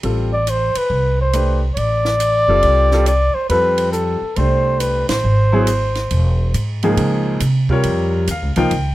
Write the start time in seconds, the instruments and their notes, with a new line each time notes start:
0.03 upright bass A1, grand piano G3 C4 F4 A4, ride
0.33 muted trumpet D5
0.47 muted trumpet C5, hi-hat pedal, ride
0.75 muted trumpet B4, muted upright bass stroke, ride
0.90 upright bass C2
1.21 muted trumpet C5
1.33 grand piano A3 D4 G4 B4, hi-hat pedal, ride
1.74 upright bass A1, muted trumpet C#5 D5, ride
2.05 snare
2.20 hi-hat pedal, ride
2.48 upright bass F#1, grand piano G3 C4 F4 A4
2.63 upright bass C2, ride
2.91 grand piano G3 C4 F4 A4, snare
3.06 muted trumpet D5, hi-hat pedal, ride
3.34 muted trumpet C5, muted upright bass stroke
3.49 upright bass F2, grand piano G3 C4 F4 A4, muted trumpet B4, ride
3.78 ride
3.92 muted trumpet A4, hi-hat pedal
4.22 muted upright bass stroke
4.36 upright bass C2, grand piano A3 D4 G4 C5, muted trumpet C5, ride
4.80 muted trumpet B4, hi-hat pedal, ride
5.09 upright bass A1, muted trumpet C5, snare, ride
5.24 upright bass G#1
5.53 grand piano F#3 B3 E4 G#4
5.67 hi-hat pedal, ride
5.95 snare, ride
6.11 upright bass E1, ride
6.54 upright bass G#2, hi-hat pedal, ride
6.83 grand piano C#2 F3 A#3 D#4 G#4, ride
6.97 upright bass C#3, ride
7.40 upright bass C3, hi-hat pedal, ride
7.69 grand piano C3 G3 F4 A#4 C#5, kick
7.83 upright bass F2, ride
8.27 upright bass D#2, grand piano F5, hi-hat pedal, ride
8.42 upright bass C#2
8.56 upright bass C2, grand piano F3 A#3 D#4 F4 G5, ride
8.71 upright bass C#2, ride